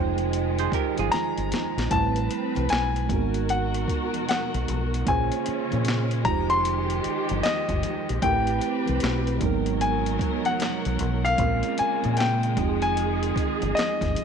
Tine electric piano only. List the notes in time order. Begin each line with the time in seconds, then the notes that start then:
Already playing: G#3 D#4 F4 G5
0.00 C5
1.90 G3 A3 C4 E4 B4
3.07 G#3 A#3
3.12 D#4 F#4 A#4
3.16 B3
5.06 A#3 C#4 F4 G#4 C5
6.24 G#3 D#4 F4
6.29 G4 C5
8.22 A3 C4 E4 G4 A#4
8.32 B4
9.38 G#3 A#3 D#4
9.44 F#3 B3 A#4
11.38 G#3 C4 C#4 F4 A#4
12.54 G#3 C4 D#4
12.60 F4 G4
12.69 G#4